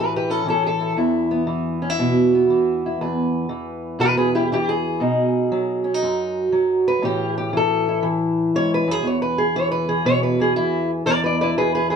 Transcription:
0.00 0.94 A2 medium
0.00 0.45 E3 medium
0.00 0.15 G4 medium
0.00 0.15 B4 loud
0.16 0.30 G4 medium
0.16 0.31 B4 medium
0.30 0.47 C#4 medium
0.30 0.48 A4 loud
0.45 1.46 E3 medium
0.45 0.65 C#4 medium
0.50 0.65 A4 medium
0.67 0.99 A4 loud
0.80 0.97 E4 soft
0.97 2.99 E2 medium
0.97 1.82 E4 soft
1.31 2.34 B3 medium
1.47 2.48 E3 medium
1.82 1.90 C#4 soft
1.90 2.82 E4 soft
1.99 2.49 B2 medium
2.35 5.87 B3 soft
2.50 3.48 E3 medium
2.86 2.99 E4 soft
3.01 5.02 E2 medium
3.01 4.00 B4 medium
3.49 4.50 E3 medium
3.99 4.50 B2 medium
3.99 4.05 G#4 medium
3.99 4.16 B4 loud
4.17 4.28 G#4 medium
4.17 4.34 B4 medium
4.35 4.43 E4 medium
4.35 4.51 G4 medium
4.52 5.01 E3 medium
4.52 4.57 E4 medium
4.52 4.69 G4 medium
4.69 6.19 G#4 medium
5.00 6.01 B2 medium
5.00 5.84 D#4 medium
5.52 6.51 F#3 medium
5.84 5.94 C#4 soft
5.94 7.03 D#4 soft
6.03 7.01 F#2 medium
6.52 7.01 F#3 medium
6.88 7.03 B4 loud
7.02 8.54 A2 medium
7.02 7.53 E3 soft
7.02 9.03 C#4 medium
7.02 7.36 G4 medium
7.38 7.54 G4 medium
7.53 8.03 E3 medium
7.53 8.05 A4 loud
7.89 8.91 E4 soft
8.03 9.56 E3 medium
8.55 8.87 G#2 medium
8.55 8.72 C#5 loud
8.74 8.89 B4 loud
8.88 9.02 F#2 medium
8.88 9.06 G#4 medium
9.03 11.06 E2 medium
9.07 9.22 C#5 medium
9.22 9.38 B4 medium
9.38 9.55 G#4 medium
9.56 9.88 E3 medium
9.56 9.71 C#5 loud
9.72 9.89 B4 medium
9.89 10.39 E3 medium
9.89 10.05 G#4 medium
10.05 10.56 B2 medium
10.05 10.23 C#5 loud
10.23 10.40 B4 medium
10.40 10.56 E3 soft
10.40 10.56 G#4 medium
10.56 11.57 E3 medium
10.56 10.90 E4 loud
11.06 11.96 E2 medium
11.06 11.12 B4 medium
11.06 11.23 D5 medium
11.24 11.35 B4 medium
11.24 11.40 D5 medium
11.41 11.91 E4 medium
11.41 11.49 B4 medium
11.41 11.57 D5 medium
11.58 11.96 E3 medium
11.58 11.74 G#4 medium
11.58 11.74 B4 loud
11.75 11.89 G#4 medium
11.75 11.90 B4 loud
11.90 11.96 E4 medium
11.90 11.96 G#4 medium
11.90 11.96 B4 medium

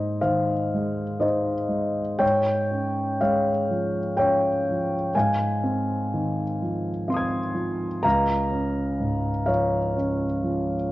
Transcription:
0.00 2.18 G#2 soft
0.00 0.53 D#4 soft
0.00 0.17 C5 soft
0.00 0.21 D#5 medium
0.21 1.03 D#3 soft
0.21 1.18 C5 soft
0.21 1.22 F5 soft
0.74 1.53 G#3 soft
1.20 2.01 D#4 soft
1.20 2.17 C5 soft
1.20 2.21 D#5 soft
1.69 2.20 G#3 soft
2.19 5.09 G#2 soft
2.19 3.15 C#5 soft
2.19 3.19 G5 medium
2.71 3.49 C#4 soft
3.21 3.99 G#3 soft
3.21 4.14 C#5 soft
3.21 4.17 F5 soft
3.70 4.47 F3 soft
4.17 4.96 C#4 soft
4.17 5.11 C#5 soft
4.17 5.14 G5 medium
4.71 5.17 F3 soft
5.15 8.01 G#2 soft
5.15 7.06 F5 soft
5.15 8.05 G#5 medium
5.63 6.41 C4 soft
6.14 6.90 D#3 soft
6.62 7.38 F3 soft
7.08 7.85 C4 soft
7.08 8.00 F5 soft
7.08 8.01 C6 soft
7.14 8.03 D#6 soft
7.14 8.05 G#6 soft
7.55 8.04 F3 soft
8.03 10.92 C#2 soft
8.03 9.45 F5 medium
8.03 9.48 A#5 medium
8.51 9.29 C#4 soft
9.00 9.78 G#2 soft
9.46 10.26 F3 soft
9.46 9.93 C#5 soft
9.46 9.96 F5 medium
9.97 10.76 C#4 soft
10.43 10.92 F3 soft

